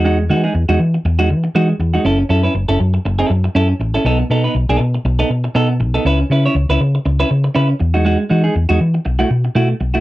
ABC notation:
X:1
M:4/4
L:1/16
Q:"Swing 16ths" 1/4=120
K:F#dor
V:1 name="Clean electric guitar"
[G,DF] z [G,DF] [G,DG] z [G,DF] z3 [G,DF] z2 [G,DF] z2 [G,DF] | [CEA] z [CEA] [CEB] z [CEA] z3 [CEA]2 z [CEA] z2 [CEA] | [B,DA] z [B,DA] [B,DB] z [B,DA]2 z2 [B,DA] z2 [B,DA] z2 [B,DA] | [CEB] z [CEB] [CEc] z [CEB] z3 [CEB] z2 [CEB] z2 [G,DF] |
[G,DF] z [G,DF] [G,DG] z [G,DF] z3 [A,EF] z2 [A,EF] z2 [A,EF] |]
V:2 name="Fingered electric bass" clef=bass
E,,2 E,2 E,, E,, E,2 E,,2 E,2 E,2 E,,2 | F,,,2 F,,2 F,,, F,,, F,,2 F,,,2 F,,2 F,,2 A,,,2 | B,,,2 B,,2 B,,, B,,, B,,2 B,,,2 B,,2 B,,2 B,,,2 | C,,2 C,2 C,, C,, C,2 C,,2 C,2 C,2 E,,2- |
E,,2 E,2 E,, E,, E,2 B,,,2 B,,2 B,,2 B,,,2 |]